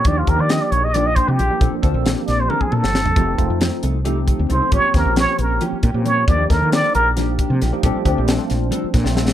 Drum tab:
HH |x-x-x-x-x-x-x-|x-x-x-x-------|x-x-x-x-x-x-x-|x-x-x-x-x-x-x-|
SD |----o---------|----o-o----oo-|----o---------|--o-o---------|
T1 |--------------|--------o-----|--------------|--------------|
T2 |--------------|----------o---|--------------|--------------|
FT |--------------|-------------o|--------------|--------------|
BD |o-o-------o---|o-o------o----|o-o-------o---|o-o-------o---|

HH |x-x-x-x-x-x-x-|x-x-x-x-x-x---|
SD |--o-o---o---o-|----o-o---oooo|
T1 |--------------|--------------|
T2 |--------------|--------------|
FT |--------------|--------------|
BD |o-o-------o---|o-o-------o---|